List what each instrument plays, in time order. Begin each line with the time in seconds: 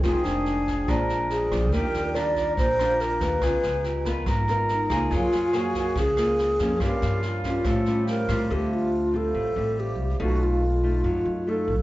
0.01 upright bass F1, nylon-string guitar F2 D#3 G#3 C4, alto flute F4, vibraphone G#4 G5, flute G#4, kick, cross-stick, snare
0.05 vibraphone C5 D#6
0.24 upright bass F1, alto flute D4, snare
0.46 snare
0.67 kick, snare
0.85 upright bass A#1, nylon-string guitar A#2 F3 G#3, vibraphone F4 G#4, flute A#4, kick, cross-stick, snare
0.89 nylon-string guitar D4, vibraphone C5 D5
1.09 snare
1.30 alto flute G#4, snare
1.51 upright bass A#1, nylon-string guitar G3 D4 F4, kick, cross-stick, snare
1.70 upright bass D#2, nylon-string guitar D#3, vibraphone F4 G4, flute G4, alto flute A#4, kick, snare
1.74 vibraphone A#4 D5
1.94 upright bass D#2, snare
2.15 nylon-string guitar G3 D4 F4, flute A#4, alto flute D5, cross-stick, snare
2.36 kick, snare
2.57 upright bass A#1, nylon-string guitar A#2, alto flute C5, kick, snare
2.78 nylon-string guitar G3 D4 F4, vibraphone F4 G4 F5, cross-stick, snare
3.00 alto flute A#4, snare
3.21 upright bass D#2, alto flute B4, kick, snare
3.40 upright bass C#2, nylon-string guitar C#3 B3 F4, vibraphone F4 A#5, flute G#4, kick, cross-stick, snare
3.46 vibraphone D#5
3.63 upright bass C#2, snare
3.84 flute G4, snare
4.05 nylon-string guitar B3 F4 A#4, flute B4, kick, snare
4.26 upright bass G#1, nylon-string guitar G#2, flute A#4, kick, cross-stick, snare
4.48 nylon-string guitar B3 F4 A#4, snare
4.69 alto flute D#4, snare
4.90 upright bass C#2, nylon-string guitar A#3 F4 G#4, kick, cross-stick, snare
5.09 upright bass F#2, nylon-string guitar F#3, vibraphone G#4 A#4 C#5, flute G#4, kick, snare
5.15 alto flute F4, vibraphone F5
5.32 upright bass F#2, snare
5.53 nylon-string guitar A#3 G#4, cross-stick, snare
5.58 alto flute F#4
5.74 kick, snare
5.96 upright bass C#2, nylon-string guitar C#3, alto flute G#4, kick, snare
6.17 nylon-string guitar A#3 F4 G#4, cross-stick, snare
6.39 snare
6.58 upright bass F2, nylon-string guitar F3 A#3 C#4, vibraphone G#4 A#4 C#5 F5, kick, snare
6.78 upright bass G2, nylon-string guitar G2, flute F4, vibraphone G4 A#4, kick, cross-stick, snare
6.82 alto flute G4, vibraphone C#5 F5
7.02 upright bass G2, snare
7.22 snare
7.44 nylon-string guitar G3 C#4 F4, alto flute F4, kick, snare
7.62 upright bass A2, nylon-string guitar A2, vibraphone G4 C5 C#5, flute A4, kick, cross-stick, snare
7.67 vibraphone F5
7.86 nylon-string guitar G3 C#4 F4, snare
8.06 flute G4, alto flute A#4, snare
8.28 upright bass A2, nylon-string guitar G3 C4 F4, flute F4, kick, cross-stick, snare
8.47 upright bass D2, nylon-string guitar D3, vibraphone G4 C5
8.51 alto flute G4, vibraphone E5 F5
8.73 alto flute F4
9.13 nylon-string guitar G3 C4 F4, alto flute A4
9.34 upright bass A1, nylon-string guitar A2
9.56 upright bass A1, nylon-string guitar G3 C4 F4
9.76 vibraphone G4 C5 E5 F5, alto flute G4
9.98 upright bass C2
10.19 upright bass B1, nylon-string guitar B2 A3 D#4 F4, alto flute F#4, vibraphone A4 D#5
10.23 vibraphone F5
10.43 alto flute F4
10.83 nylon-string guitar A3 D#4 F4
11.04 upright bass F#2, nylon-string guitar F#3
11.25 upright bass F#2
11.47 nylon-string guitar A3 D#4 F4, alto flute A4
11.68 upright bass B1